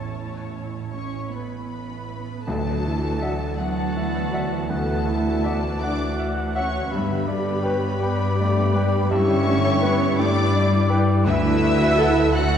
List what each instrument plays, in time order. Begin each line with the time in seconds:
Already playing: double bass section A1, grand piano E2, cello section A2, harp A2 A4, viola section C#4 E4, violin section C#5 A5
0.92 cello section C#4, violin section C#5 C#6
1.31 cello section B3, violin section B4 B5
2.45 grand piano D2, double bass section D2, harp D3, timpani D3, french horn section E3 F#4, viola section F#3 F#4, cello section A3, violin section A4 A5
2.66 harp A3
2.84 viola section E3, harp E4, grand piano E4
3.04 harp F#4
3.21 viola section F#3, grand piano D5, clarinet E5, flute F#5
3.42 harp E5
3.59 cello section F#3, viola section B3 D4, violin section F#4 F#5, grand piano F#5, harp F#5, cor anglais A5
3.79 harp A5
3.96 viola section E4, grand piano E5, harp F#5
4.16 harp E5
4.33 viola section F#4, grand piano D5, clarinet E5, flute F#5
4.52 harp F#4
4.70 grand piano D2, harp D3, cello section A3, viola section F#4, violin section A4 A5, cor anglais F#5
4.90 harp A3
5.06 viola section E4, harp E4, grand piano E4, cor anglais E5
5.27 harp F#4
5.43 viola section D4, cor anglais D5, grand piano D5, clarinet E5, flute F#5
5.63 harp E5
5.80 viola section A3 F#4, cello section D4, violin section D5 D6, cor anglais F#5, harp F#5, grand piano F#5
6.18 grand piano E5, harp F#5
6.36 harp E5
6.55 cello section C#4, violin section C#5 C#6, clarinet E5, grand piano E5, flute F#5
6.73 harp F#4
6.91 harp G2, double bass section G2, grand piano G2, viola section G3 G4, french horn section G3 G4, cello section B3, violin section B4 B5, cor anglais E5
7.09 harp D3
7.27 harp B3, grand piano D4, cor anglais D5
7.46 harp G4
7.63 harp B4, clarinet B4, grand piano B4, cor anglais C#5, flute G5
8.00 viola section B3 G4, cor anglais D5, harp G5, grand piano G5
8.19 harp B5
8.36 viola section A3, grand piano D5, harp G5
8.73 viola section G3, clarinet B4, harp B4, grand piano B4, flute G5
8.92 harp G4
9.10 harp G2, grand piano G2, viola section G3 E4, cello section C#4, violin section C#5 C#6, cor anglais E5
9.28 harp D3
9.47 grand piano D3, viola section A3
9.65 harp G4
9.82 viola section B3, harp B4, clarinet B4, grand piano B4, flute G5
10.18 viola section A3, cello section D4, cor anglais D5, violin section D5 D6, harp G5, grand piano G5
10.36 harp B5
10.54 viola section G3, grand piano D5, harp G5
10.89 viola section G3, grand piano B4, clarinet B4, harp B4, flute G5
11.07 harp G4
11.24 grand piano D2, double bass section D2, harp D3, french horn section F#3 A4, viola section A3 D4, cello section E4, cor anglais B4, violin section E5 E6
11.44 harp A3
11.60 grand piano D4, harp E4, viola section F#4
11.80 harp F#4
11.97 viola section E4, harp A4, clarinet A4, grand piano A4, flute F#5
12.16 harp E5
12.33 viola section D3 F#3, cello section F#4, harp F#5, violin section F#5 F#6, grand piano F#5, cor anglais A5
12.52 harp A5